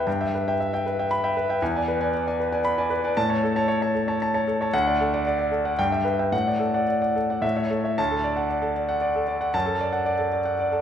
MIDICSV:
0, 0, Header, 1, 2, 480
1, 0, Start_track
1, 0, Key_signature, 2, "major"
1, 0, Tempo, 518135
1, 58, Time_signature, 3, 2, 24, 8
1, 4859, Tempo, 546946
1, 7259, Tempo, 522193
1, 9864, End_track
2, 0, Start_track
2, 0, Title_t, "Grand piano"
2, 0, Program_c, 0, 0
2, 0, Control_c, 0, 64, 127
2, 63, Note_on_c, 0, 79, 60
2, 64, Note_on_c, 0, 43, 66
2, 78, Control_c, 0, 64, 0
2, 179, Note_off_c, 0, 79, 0
2, 192, Note_on_c, 0, 79, 57
2, 194, Note_on_c, 0, 76, 52
2, 213, Control_c, 0, 64, 127
2, 293, Note_off_c, 0, 79, 0
2, 294, Note_off_c, 0, 76, 0
2, 319, Note_on_c, 0, 71, 54
2, 443, Note_on_c, 0, 76, 53
2, 443, Note_on_c, 0, 79, 58
2, 500, Note_off_c, 0, 71, 0
2, 539, Note_off_c, 0, 76, 0
2, 539, Note_off_c, 0, 79, 0
2, 559, Note_on_c, 0, 76, 58
2, 665, Note_off_c, 0, 76, 0
2, 679, Note_on_c, 0, 76, 55
2, 685, Note_on_c, 0, 79, 56
2, 776, Note_off_c, 0, 76, 0
2, 779, Note_off_c, 0, 79, 0
2, 798, Note_on_c, 0, 71, 53
2, 921, Note_on_c, 0, 76, 56
2, 921, Note_on_c, 0, 79, 53
2, 977, Note_off_c, 0, 71, 0
2, 1015, Note_off_c, 0, 76, 0
2, 1016, Note_off_c, 0, 79, 0
2, 1027, Note_on_c, 0, 83, 80
2, 1147, Note_on_c, 0, 79, 63
2, 1148, Note_on_c, 0, 76, 54
2, 1208, Note_off_c, 0, 83, 0
2, 1246, Note_off_c, 0, 79, 0
2, 1247, Note_off_c, 0, 76, 0
2, 1269, Note_on_c, 0, 71, 61
2, 1384, Note_on_c, 0, 76, 50
2, 1390, Note_on_c, 0, 79, 58
2, 1450, Note_off_c, 0, 71, 0
2, 1453, Note_off_c, 0, 43, 0
2, 1484, Note_off_c, 0, 76, 0
2, 1488, Note_off_c, 0, 79, 0
2, 1502, Note_on_c, 0, 40, 72
2, 1502, Note_on_c, 0, 80, 63
2, 1504, Control_c, 0, 64, 0
2, 1619, Note_off_c, 0, 80, 0
2, 1625, Note_on_c, 0, 74, 51
2, 1633, Note_on_c, 0, 80, 58
2, 1667, Control_c, 0, 64, 127
2, 1725, Note_off_c, 0, 74, 0
2, 1729, Note_off_c, 0, 80, 0
2, 1742, Note_on_c, 0, 71, 57
2, 1860, Note_on_c, 0, 80, 59
2, 1864, Note_on_c, 0, 74, 56
2, 1926, Note_off_c, 0, 71, 0
2, 1961, Note_off_c, 0, 80, 0
2, 1964, Note_off_c, 0, 74, 0
2, 1984, Note_on_c, 0, 74, 59
2, 2087, Note_off_c, 0, 74, 0
2, 2101, Note_on_c, 0, 74, 50
2, 2108, Note_on_c, 0, 80, 60
2, 2202, Note_off_c, 0, 74, 0
2, 2206, Note_off_c, 0, 80, 0
2, 2223, Note_on_c, 0, 71, 53
2, 2339, Note_on_c, 0, 74, 57
2, 2339, Note_on_c, 0, 80, 65
2, 2407, Note_off_c, 0, 71, 0
2, 2441, Note_off_c, 0, 74, 0
2, 2441, Note_off_c, 0, 80, 0
2, 2451, Note_on_c, 0, 83, 84
2, 2577, Note_on_c, 0, 74, 59
2, 2577, Note_on_c, 0, 80, 61
2, 2642, Note_off_c, 0, 83, 0
2, 2681, Note_off_c, 0, 74, 0
2, 2681, Note_off_c, 0, 80, 0
2, 2689, Note_on_c, 0, 71, 61
2, 2816, Note_on_c, 0, 74, 59
2, 2825, Note_on_c, 0, 80, 59
2, 2881, Note_off_c, 0, 71, 0
2, 2899, Note_off_c, 0, 40, 0
2, 2921, Note_off_c, 0, 74, 0
2, 2926, Note_off_c, 0, 80, 0
2, 2936, Note_on_c, 0, 81, 82
2, 2938, Note_on_c, 0, 45, 69
2, 2944, Control_c, 0, 64, 0
2, 3043, Note_off_c, 0, 81, 0
2, 3053, Note_on_c, 0, 73, 53
2, 3056, Note_on_c, 0, 81, 55
2, 3072, Control_c, 0, 64, 127
2, 3159, Note_off_c, 0, 73, 0
2, 3161, Note_off_c, 0, 81, 0
2, 3183, Note_on_c, 0, 69, 61
2, 3297, Note_on_c, 0, 73, 60
2, 3300, Note_on_c, 0, 81, 70
2, 3369, Note_off_c, 0, 69, 0
2, 3395, Note_off_c, 0, 73, 0
2, 3404, Note_off_c, 0, 81, 0
2, 3409, Note_on_c, 0, 73, 64
2, 3520, Note_off_c, 0, 73, 0
2, 3534, Note_on_c, 0, 73, 54
2, 3541, Note_on_c, 0, 81, 64
2, 3643, Note_off_c, 0, 73, 0
2, 3646, Note_off_c, 0, 81, 0
2, 3655, Note_on_c, 0, 69, 50
2, 3777, Note_on_c, 0, 73, 60
2, 3780, Note_on_c, 0, 81, 59
2, 3848, Note_off_c, 0, 69, 0
2, 3885, Note_off_c, 0, 73, 0
2, 3887, Note_off_c, 0, 81, 0
2, 3909, Note_on_c, 0, 81, 70
2, 4010, Note_off_c, 0, 81, 0
2, 4024, Note_on_c, 0, 73, 58
2, 4024, Note_on_c, 0, 81, 61
2, 4129, Note_off_c, 0, 73, 0
2, 4129, Note_off_c, 0, 81, 0
2, 4146, Note_on_c, 0, 69, 59
2, 4268, Note_on_c, 0, 73, 56
2, 4280, Note_on_c, 0, 81, 56
2, 4334, Note_off_c, 0, 69, 0
2, 4345, Note_off_c, 0, 45, 0
2, 4371, Note_off_c, 0, 73, 0
2, 4378, Note_off_c, 0, 81, 0
2, 4386, Note_on_c, 0, 38, 72
2, 4387, Note_on_c, 0, 78, 92
2, 4397, Control_c, 0, 64, 0
2, 4502, Note_off_c, 0, 78, 0
2, 4512, Note_on_c, 0, 74, 57
2, 4516, Note_on_c, 0, 78, 64
2, 4563, Control_c, 0, 64, 127
2, 4613, Note_off_c, 0, 74, 0
2, 4615, Note_off_c, 0, 78, 0
2, 4639, Note_on_c, 0, 69, 59
2, 4758, Note_on_c, 0, 74, 61
2, 4759, Note_on_c, 0, 78, 65
2, 4821, Note_off_c, 0, 69, 0
2, 4858, Note_off_c, 0, 74, 0
2, 4859, Note_off_c, 0, 78, 0
2, 4878, Note_on_c, 0, 74, 67
2, 4972, Note_off_c, 0, 74, 0
2, 4984, Note_on_c, 0, 78, 57
2, 4985, Note_on_c, 0, 74, 50
2, 5085, Note_off_c, 0, 78, 0
2, 5086, Note_off_c, 0, 74, 0
2, 5095, Note_on_c, 0, 69, 52
2, 5216, Note_on_c, 0, 78, 59
2, 5217, Note_on_c, 0, 74, 54
2, 5281, Note_off_c, 0, 69, 0
2, 5303, Note_off_c, 0, 38, 0
2, 5319, Note_off_c, 0, 74, 0
2, 5319, Note_off_c, 0, 78, 0
2, 5334, Note_on_c, 0, 79, 81
2, 5336, Note_on_c, 0, 43, 65
2, 5346, Control_c, 0, 64, 0
2, 5441, Note_off_c, 0, 79, 0
2, 5451, Note_on_c, 0, 76, 51
2, 5454, Note_on_c, 0, 79, 57
2, 5503, Control_c, 0, 64, 127
2, 5555, Note_off_c, 0, 76, 0
2, 5557, Note_off_c, 0, 79, 0
2, 5563, Note_on_c, 0, 71, 55
2, 5689, Note_on_c, 0, 76, 48
2, 5691, Note_on_c, 0, 79, 55
2, 5757, Note_off_c, 0, 71, 0
2, 5797, Note_off_c, 0, 43, 0
2, 5797, Note_off_c, 0, 76, 0
2, 5799, Note_off_c, 0, 79, 0
2, 5805, Note_on_c, 0, 45, 57
2, 5806, Note_on_c, 0, 78, 72
2, 5822, Control_c, 0, 64, 0
2, 5929, Note_off_c, 0, 78, 0
2, 5934, Note_on_c, 0, 74, 49
2, 5942, Note_on_c, 0, 78, 50
2, 5972, Control_c, 0, 64, 127
2, 6042, Note_off_c, 0, 74, 0
2, 6043, Note_on_c, 0, 69, 57
2, 6047, Note_off_c, 0, 78, 0
2, 6171, Note_on_c, 0, 74, 53
2, 6174, Note_on_c, 0, 78, 58
2, 6243, Note_off_c, 0, 69, 0
2, 6278, Note_off_c, 0, 74, 0
2, 6284, Note_off_c, 0, 78, 0
2, 6291, Note_on_c, 0, 74, 55
2, 6399, Note_off_c, 0, 74, 0
2, 6413, Note_on_c, 0, 74, 46
2, 6414, Note_on_c, 0, 78, 51
2, 6524, Note_off_c, 0, 74, 0
2, 6525, Note_off_c, 0, 78, 0
2, 6536, Note_on_c, 0, 69, 49
2, 6661, Note_on_c, 0, 74, 46
2, 6663, Note_on_c, 0, 78, 52
2, 6731, Note_off_c, 0, 69, 0
2, 6750, Note_off_c, 0, 45, 0
2, 6764, Note_on_c, 0, 45, 62
2, 6767, Note_on_c, 0, 76, 67
2, 6769, Note_off_c, 0, 74, 0
2, 6771, Note_off_c, 0, 78, 0
2, 6796, Control_c, 0, 64, 0
2, 6882, Note_off_c, 0, 76, 0
2, 6895, Note_on_c, 0, 76, 57
2, 6896, Note_on_c, 0, 73, 50
2, 6935, Control_c, 0, 64, 127
2, 7007, Note_off_c, 0, 73, 0
2, 7007, Note_off_c, 0, 76, 0
2, 7016, Note_on_c, 0, 69, 51
2, 7135, Note_on_c, 0, 73, 42
2, 7142, Note_on_c, 0, 76, 51
2, 7210, Note_off_c, 0, 69, 0
2, 7236, Note_off_c, 0, 45, 0
2, 7243, Note_off_c, 0, 73, 0
2, 7248, Note_off_c, 0, 76, 0
2, 7259, Note_on_c, 0, 81, 82
2, 7263, Note_on_c, 0, 38, 66
2, 7278, Control_c, 0, 64, 0
2, 7381, Note_on_c, 0, 69, 57
2, 7412, Control_c, 0, 64, 127
2, 7453, Note_off_c, 0, 81, 0
2, 7496, Note_on_c, 0, 74, 59
2, 7574, Note_off_c, 0, 69, 0
2, 7612, Note_on_c, 0, 78, 57
2, 7692, Note_off_c, 0, 74, 0
2, 7733, Note_on_c, 0, 74, 55
2, 7809, Note_off_c, 0, 78, 0
2, 7846, Note_on_c, 0, 69, 53
2, 7929, Note_off_c, 0, 74, 0
2, 7974, Note_on_c, 0, 74, 52
2, 8045, Note_off_c, 0, 69, 0
2, 8092, Note_on_c, 0, 78, 61
2, 8168, Note_off_c, 0, 74, 0
2, 8208, Note_on_c, 0, 74, 59
2, 8286, Note_off_c, 0, 78, 0
2, 8340, Note_on_c, 0, 69, 58
2, 8404, Note_off_c, 0, 74, 0
2, 8453, Note_on_c, 0, 74, 58
2, 8529, Note_off_c, 0, 69, 0
2, 8572, Note_on_c, 0, 78, 59
2, 8646, Note_off_c, 0, 74, 0
2, 8660, Note_off_c, 0, 38, 0
2, 8693, Note_off_c, 0, 78, 0
2, 8693, Note_on_c, 0, 81, 77
2, 8694, Note_on_c, 0, 42, 62
2, 8712, Control_c, 0, 64, 0
2, 8804, Note_on_c, 0, 69, 59
2, 8863, Control_c, 0, 64, 127
2, 8886, Note_off_c, 0, 81, 0
2, 8937, Note_on_c, 0, 74, 59
2, 9002, Note_off_c, 0, 69, 0
2, 9048, Note_on_c, 0, 78, 62
2, 9129, Note_off_c, 0, 74, 0
2, 9167, Note_on_c, 0, 74, 65
2, 9244, Note_off_c, 0, 78, 0
2, 9286, Note_on_c, 0, 69, 49
2, 9364, Note_off_c, 0, 74, 0
2, 9416, Note_on_c, 0, 74, 50
2, 9484, Note_off_c, 0, 69, 0
2, 9534, Note_on_c, 0, 78, 57
2, 9610, Note_off_c, 0, 74, 0
2, 9658, Note_on_c, 0, 74, 57
2, 9729, Note_off_c, 0, 78, 0
2, 9779, Note_on_c, 0, 69, 55
2, 9852, Note_off_c, 0, 74, 0
2, 9864, Note_off_c, 0, 42, 0
2, 9864, Note_off_c, 0, 69, 0
2, 9864, End_track
0, 0, End_of_file